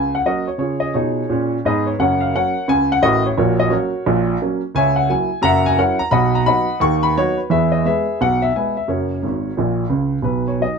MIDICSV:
0, 0, Header, 1, 2, 480
1, 0, Start_track
1, 0, Key_signature, 6, "major"
1, 0, Tempo, 345622
1, 821, Time_signature, 4, 2, 24, 8
1, 6587, Key_signature, 5, "major"
1, 14980, End_track
2, 0, Start_track
2, 0, Title_t, "Upright piano"
2, 0, Program_c, 0, 0
2, 0, Note_on_c, 0, 37, 81
2, 0, Note_on_c, 0, 49, 78
2, 0, Note_on_c, 0, 80, 105
2, 166, Note_off_c, 0, 80, 0
2, 206, Note_on_c, 0, 78, 87
2, 263, Note_off_c, 0, 37, 0
2, 263, Note_off_c, 0, 49, 0
2, 353, Note_on_c, 0, 54, 46
2, 358, Note_off_c, 0, 78, 0
2, 358, Note_on_c, 0, 58, 46
2, 362, Note_on_c, 0, 61, 46
2, 363, Note_on_c, 0, 75, 87
2, 375, Note_on_c, 0, 66, 74
2, 376, Note_on_c, 0, 70, 66
2, 614, Note_off_c, 0, 54, 0
2, 617, Note_off_c, 0, 58, 0
2, 620, Note_off_c, 0, 61, 0
2, 648, Note_off_c, 0, 66, 0
2, 648, Note_off_c, 0, 70, 0
2, 659, Note_on_c, 0, 73, 69
2, 662, Note_off_c, 0, 75, 0
2, 797, Note_off_c, 0, 73, 0
2, 807, Note_on_c, 0, 49, 68
2, 818, Note_on_c, 0, 73, 80
2, 839, Note_on_c, 0, 65, 62
2, 844, Note_on_c, 0, 68, 58
2, 1074, Control_c, 0, 64, 127
2, 1111, Note_on_c, 0, 75, 78
2, 1119, Note_off_c, 0, 65, 0
2, 1122, Note_off_c, 0, 68, 0
2, 1130, Note_off_c, 0, 73, 0
2, 1198, Note_off_c, 0, 49, 0
2, 1292, Note_off_c, 0, 75, 0
2, 1311, Note_on_c, 0, 73, 70
2, 1316, Control_c, 0, 64, 0
2, 1316, Note_on_c, 0, 47, 63
2, 1324, Note_on_c, 0, 65, 59
2, 1329, Note_on_c, 0, 63, 78
2, 1330, Note_on_c, 0, 68, 57
2, 1695, Note_off_c, 0, 47, 0
2, 1703, Note_off_c, 0, 63, 0
2, 1800, Note_on_c, 0, 46, 85
2, 1833, Note_on_c, 0, 61, 78
2, 2049, Note_off_c, 0, 65, 0
2, 2053, Note_off_c, 0, 68, 0
2, 2097, Note_off_c, 0, 73, 0
2, 2178, Note_off_c, 0, 46, 0
2, 2197, Note_off_c, 0, 61, 0
2, 2296, Note_on_c, 0, 44, 88
2, 2306, Note_on_c, 0, 75, 86
2, 2317, Note_on_c, 0, 59, 80
2, 2319, Note_on_c, 0, 68, 74
2, 2323, Note_on_c, 0, 71, 83
2, 2582, Note_off_c, 0, 68, 0
2, 2584, Note_off_c, 0, 71, 0
2, 2589, Note_on_c, 0, 73, 75
2, 2595, Note_off_c, 0, 75, 0
2, 2668, Note_off_c, 0, 44, 0
2, 2680, Note_off_c, 0, 59, 0
2, 2752, Note_off_c, 0, 73, 0
2, 2761, Note_on_c, 0, 30, 75
2, 2774, Note_on_c, 0, 42, 81
2, 2774, Note_on_c, 0, 78, 89
2, 2790, Note_on_c, 0, 70, 74
2, 2798, Note_on_c, 0, 73, 69
2, 2983, Control_c, 0, 64, 127
2, 3057, Note_off_c, 0, 70, 0
2, 3061, Note_off_c, 0, 73, 0
2, 3063, Note_on_c, 0, 77, 81
2, 3070, Note_off_c, 0, 78, 0
2, 3162, Note_off_c, 0, 30, 0
2, 3170, Note_off_c, 0, 42, 0
2, 3229, Note_off_c, 0, 77, 0
2, 3247, Control_c, 0, 64, 0
2, 3263, Note_on_c, 0, 61, 57
2, 3265, Note_on_c, 0, 54, 53
2, 3266, Note_on_c, 0, 58, 46
2, 3272, Note_on_c, 0, 78, 97
2, 3275, Note_on_c, 0, 73, 67
2, 3281, Note_on_c, 0, 70, 72
2, 3517, Note_off_c, 0, 61, 0
2, 3518, Note_off_c, 0, 54, 0
2, 3519, Note_off_c, 0, 58, 0
2, 3699, Note_off_c, 0, 73, 0
2, 3702, Note_off_c, 0, 70, 0
2, 3723, Note_on_c, 0, 37, 89
2, 3723, Note_on_c, 0, 49, 84
2, 3729, Note_off_c, 0, 78, 0
2, 3739, Note_on_c, 0, 80, 118
2, 4032, Note_off_c, 0, 80, 0
2, 4055, Note_on_c, 0, 78, 106
2, 4124, Note_off_c, 0, 37, 0
2, 4124, Note_off_c, 0, 49, 0
2, 4194, Note_on_c, 0, 45, 84
2, 4202, Note_on_c, 0, 33, 84
2, 4204, Note_on_c, 0, 75, 114
2, 4206, Note_off_c, 0, 78, 0
2, 4234, Note_on_c, 0, 70, 78
2, 4235, Note_on_c, 0, 66, 85
2, 4500, Note_off_c, 0, 66, 0
2, 4500, Note_off_c, 0, 70, 0
2, 4505, Note_off_c, 0, 75, 0
2, 4528, Note_on_c, 0, 73, 79
2, 4575, Note_off_c, 0, 45, 0
2, 4580, Note_off_c, 0, 33, 0
2, 4669, Note_off_c, 0, 73, 0
2, 4689, Note_on_c, 0, 34, 82
2, 4690, Note_on_c, 0, 73, 88
2, 4697, Note_on_c, 0, 46, 84
2, 4705, Note_on_c, 0, 70, 74
2, 4711, Note_on_c, 0, 66, 72
2, 4904, Control_c, 0, 64, 127
2, 4975, Note_off_c, 0, 70, 0
2, 4978, Note_off_c, 0, 66, 0
2, 4988, Note_off_c, 0, 73, 0
2, 4994, Note_on_c, 0, 75, 92
2, 5087, Note_off_c, 0, 34, 0
2, 5092, Note_off_c, 0, 46, 0
2, 5126, Note_on_c, 0, 54, 57
2, 5139, Note_on_c, 0, 73, 79
2, 5143, Note_on_c, 0, 58, 53
2, 5149, Note_on_c, 0, 61, 52
2, 5156, Note_off_c, 0, 75, 0
2, 5156, Note_on_c, 0, 66, 67
2, 5159, Note_on_c, 0, 70, 73
2, 5168, Control_c, 0, 64, 0
2, 5396, Note_off_c, 0, 54, 0
2, 5408, Note_off_c, 0, 58, 0
2, 5412, Note_off_c, 0, 61, 0
2, 5644, Note_on_c, 0, 34, 94
2, 5646, Note_on_c, 0, 46, 94
2, 5886, Note_off_c, 0, 66, 0
2, 5888, Note_off_c, 0, 70, 0
2, 5933, Note_off_c, 0, 73, 0
2, 6045, Note_off_c, 0, 34, 0
2, 6046, Note_off_c, 0, 46, 0
2, 6137, Note_on_c, 0, 54, 59
2, 6138, Note_on_c, 0, 58, 67
2, 6143, Note_on_c, 0, 61, 67
2, 6393, Note_off_c, 0, 54, 0
2, 6394, Note_off_c, 0, 58, 0
2, 6397, Note_off_c, 0, 61, 0
2, 6593, Note_on_c, 0, 37, 83
2, 6600, Note_on_c, 0, 49, 90
2, 6607, Note_on_c, 0, 80, 125
2, 6624, Note_on_c, 0, 73, 86
2, 6626, Note_on_c, 0, 76, 90
2, 6825, Control_c, 0, 64, 127
2, 6888, Note_on_c, 0, 78, 82
2, 6895, Note_off_c, 0, 73, 0
2, 6896, Note_off_c, 0, 76, 0
2, 6907, Note_off_c, 0, 80, 0
2, 6999, Note_off_c, 0, 37, 0
2, 7003, Note_off_c, 0, 49, 0
2, 7063, Note_off_c, 0, 78, 0
2, 7073, Note_on_c, 0, 58, 55
2, 7077, Note_on_c, 0, 54, 64
2, 7087, Note_on_c, 0, 80, 98
2, 7089, Control_c, 0, 64, 0
2, 7089, Note_on_c, 0, 64, 60
2, 7335, Note_off_c, 0, 58, 0
2, 7338, Note_off_c, 0, 54, 0
2, 7347, Note_off_c, 0, 64, 0
2, 7522, Note_on_c, 0, 42, 97
2, 7536, Note_on_c, 0, 82, 127
2, 7541, Note_on_c, 0, 30, 88
2, 7555, Note_on_c, 0, 76, 97
2, 7557, Note_off_c, 0, 80, 0
2, 7561, Note_on_c, 0, 78, 96
2, 7789, Control_c, 0, 64, 127
2, 7839, Note_off_c, 0, 76, 0
2, 7842, Note_off_c, 0, 78, 0
2, 7851, Note_off_c, 0, 82, 0
2, 7862, Note_on_c, 0, 80, 111
2, 7940, Note_off_c, 0, 42, 0
2, 7952, Note_off_c, 0, 30, 0
2, 8026, Note_on_c, 0, 54, 54
2, 8030, Note_off_c, 0, 80, 0
2, 8031, Note_on_c, 0, 61, 57
2, 8034, Note_on_c, 0, 64, 66
2, 8036, Note_on_c, 0, 70, 79
2, 8037, Note_on_c, 0, 78, 94
2, 8039, Note_on_c, 0, 73, 80
2, 8046, Control_c, 0, 64, 0
2, 8290, Note_off_c, 0, 54, 0
2, 8293, Note_off_c, 0, 61, 0
2, 8296, Note_off_c, 0, 64, 0
2, 8319, Note_off_c, 0, 70, 0
2, 8321, Note_off_c, 0, 73, 0
2, 8323, Note_on_c, 0, 82, 102
2, 8342, Note_off_c, 0, 78, 0
2, 8487, Note_on_c, 0, 83, 104
2, 8493, Note_on_c, 0, 35, 81
2, 8496, Note_on_c, 0, 47, 90
2, 8500, Note_off_c, 0, 82, 0
2, 8504, Note_on_c, 0, 75, 91
2, 8507, Note_on_c, 0, 78, 82
2, 8754, Control_c, 0, 64, 127
2, 8793, Note_off_c, 0, 75, 0
2, 8795, Note_off_c, 0, 78, 0
2, 8806, Note_off_c, 0, 83, 0
2, 8821, Note_on_c, 0, 82, 95
2, 8907, Note_off_c, 0, 35, 0
2, 8908, Note_off_c, 0, 47, 0
2, 8976, Note_on_c, 0, 83, 113
2, 8986, Note_on_c, 0, 54, 59
2, 8987, Note_on_c, 0, 63, 65
2, 8989, Note_off_c, 0, 82, 0
2, 8989, Note_on_c, 0, 59, 46
2, 9000, Note_on_c, 0, 75, 70
2, 9002, Control_c, 0, 64, 0
2, 9010, Note_on_c, 0, 78, 79
2, 9250, Note_off_c, 0, 54, 0
2, 9251, Note_off_c, 0, 63, 0
2, 9252, Note_off_c, 0, 59, 0
2, 9440, Note_off_c, 0, 75, 0
2, 9445, Note_off_c, 0, 78, 0
2, 9449, Note_on_c, 0, 39, 97
2, 9461, Note_off_c, 0, 83, 0
2, 9462, Note_on_c, 0, 85, 104
2, 9466, Note_on_c, 0, 51, 88
2, 9712, Control_c, 0, 64, 127
2, 9761, Note_on_c, 0, 83, 105
2, 9773, Note_off_c, 0, 85, 0
2, 9864, Note_off_c, 0, 39, 0
2, 9874, Note_off_c, 0, 51, 0
2, 9939, Note_off_c, 0, 83, 0
2, 9963, Control_c, 0, 64, 0
2, 9965, Note_on_c, 0, 73, 112
2, 9967, Note_on_c, 0, 54, 58
2, 9969, Note_on_c, 0, 59, 53
2, 9970, Note_on_c, 0, 63, 61
2, 9979, Note_on_c, 0, 66, 83
2, 10225, Note_off_c, 0, 54, 0
2, 10226, Note_off_c, 0, 59, 0
2, 10227, Note_off_c, 0, 63, 0
2, 10237, Note_on_c, 0, 71, 68
2, 10251, Note_off_c, 0, 66, 0
2, 10265, Note_off_c, 0, 73, 0
2, 10414, Note_on_c, 0, 52, 78
2, 10416, Note_off_c, 0, 71, 0
2, 10418, Note_on_c, 0, 40, 76
2, 10431, Note_on_c, 0, 76, 102
2, 10442, Note_on_c, 0, 71, 73
2, 10443, Note_on_c, 0, 68, 66
2, 10676, Control_c, 0, 64, 127
2, 10719, Note_on_c, 0, 75, 75
2, 10722, Note_off_c, 0, 68, 0
2, 10722, Note_off_c, 0, 71, 0
2, 10737, Note_off_c, 0, 76, 0
2, 10826, Note_off_c, 0, 52, 0
2, 10829, Note_off_c, 0, 40, 0
2, 10897, Note_off_c, 0, 75, 0
2, 10907, Note_on_c, 0, 56, 49
2, 10913, Note_on_c, 0, 59, 50
2, 10918, Control_c, 0, 64, 0
2, 10921, Note_on_c, 0, 76, 95
2, 10935, Note_on_c, 0, 71, 57
2, 10943, Note_on_c, 0, 68, 68
2, 11170, Note_off_c, 0, 56, 0
2, 11175, Note_off_c, 0, 59, 0
2, 11367, Note_off_c, 0, 71, 0
2, 11371, Note_off_c, 0, 68, 0
2, 11392, Note_off_c, 0, 76, 0
2, 11401, Note_on_c, 0, 35, 78
2, 11401, Note_on_c, 0, 47, 75
2, 11410, Note_on_c, 0, 78, 102
2, 11697, Note_on_c, 0, 76, 93
2, 11706, Note_off_c, 0, 78, 0
2, 11801, Note_off_c, 0, 35, 0
2, 11801, Note_off_c, 0, 47, 0
2, 11865, Note_off_c, 0, 76, 0
2, 11888, Note_on_c, 0, 80, 80
2, 11898, Note_on_c, 0, 56, 47
2, 11902, Note_on_c, 0, 59, 50
2, 11905, Note_on_c, 0, 76, 65
2, 11919, Note_on_c, 0, 71, 66
2, 12152, Note_off_c, 0, 56, 0
2, 12155, Note_off_c, 0, 59, 0
2, 12159, Note_off_c, 0, 76, 0
2, 12180, Note_on_c, 0, 76, 73
2, 12181, Note_off_c, 0, 71, 0
2, 12185, Note_off_c, 0, 80, 0
2, 12329, Note_on_c, 0, 42, 72
2, 12333, Note_on_c, 0, 30, 54
2, 12343, Note_on_c, 0, 73, 68
2, 12346, Note_off_c, 0, 76, 0
2, 12346, Note_on_c, 0, 70, 56
2, 12358, Note_on_c, 0, 66, 53
2, 12588, Control_c, 0, 64, 127
2, 12742, Note_off_c, 0, 42, 0
2, 12745, Note_off_c, 0, 30, 0
2, 12818, Note_on_c, 0, 44, 58
2, 12831, Note_on_c, 0, 32, 61
2, 12839, Control_c, 0, 64, 0
2, 13179, Note_off_c, 0, 44, 0
2, 13187, Note_off_c, 0, 32, 0
2, 13295, Note_on_c, 0, 46, 75
2, 13311, Note_on_c, 0, 34, 73
2, 13657, Note_off_c, 0, 46, 0
2, 13667, Note_off_c, 0, 34, 0
2, 13728, Note_off_c, 0, 70, 0
2, 13734, Note_off_c, 0, 66, 0
2, 13744, Note_on_c, 0, 37, 71
2, 13749, Note_on_c, 0, 49, 66
2, 13782, Note_off_c, 0, 73, 0
2, 14118, Note_off_c, 0, 37, 0
2, 14121, Note_off_c, 0, 49, 0
2, 14199, Note_on_c, 0, 35, 64
2, 14217, Note_on_c, 0, 47, 65
2, 14224, Note_on_c, 0, 71, 74
2, 14500, Control_c, 0, 64, 127
2, 14550, Note_on_c, 0, 73, 67
2, 14552, Note_off_c, 0, 71, 0
2, 14633, Note_off_c, 0, 35, 0
2, 14644, Note_off_c, 0, 47, 0
2, 14727, Note_on_c, 0, 54, 43
2, 14731, Note_off_c, 0, 73, 0
2, 14741, Note_on_c, 0, 63, 42
2, 14750, Note_on_c, 0, 75, 78
2, 14762, Control_c, 0, 64, 0
2, 14980, Note_off_c, 0, 54, 0
2, 14980, Note_off_c, 0, 63, 0
2, 14980, Note_off_c, 0, 75, 0
2, 14980, End_track
0, 0, End_of_file